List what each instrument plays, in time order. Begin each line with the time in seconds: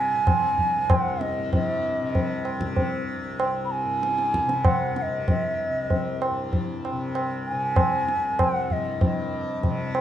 Already playing: tanpura C2 G2 C3, bansuri G#5
0.15 tanpura C3
0.27 tabla na, tabla ge
0.58 tabla ge
0.76 tanpura C2
0.90 bansuri F#5, tabla na, tabla ge
1.21 bansuri D#5, tabla te
1.38 tanpura G2
1.53 bansuri D#5, tabla tin, tabla ge
2.01 tanpura C3
2.15 tabla tin, tabla ge
2.45 tabla na
2.61 tanpura C3, tabla ke
2.77 tabla tin, tabla ge
3.22 tanpura C2
3.40 tabla na
3.65 bansuri B5
3.71 bansuri G#5
3.85 tanpura G2
4.03 tabla te
4.18 tabla te
4.34 tabla ke
4.46 tanpura C3, tabla te
4.65 bansuri F#5, tabla na, tabla ge
4.96 bansuri F#5, tabla te
5.02 bansuri D#5
5.08 tanpura C3
5.28 bansuri D#5, tabla tin, tabla ge
5.70 tanpura C2
5.90 tabla tin, tabla ge
6.22 tabla na
6.31 tanpura G2
6.53 tabla tin, tabla ge
6.85 tabla na
6.92 tanpura C3
7.15 tabla na
7.47 bansuri G#5
7.52 tanpura C3
7.76 tabla na, tabla ge
8.08 tabla te
8.14 tanpura C2
8.39 tabla na, tabla ge
8.43 bansuri F#5
8.70 bansuri D#5, tabla ge
8.75 tanpura G2
9.01 tanpura G2, tabla tin, tabla ge
9.06 bansuri D#5
9.63 tanpura C3, tabla tin, tabla ge
9.95 tabla na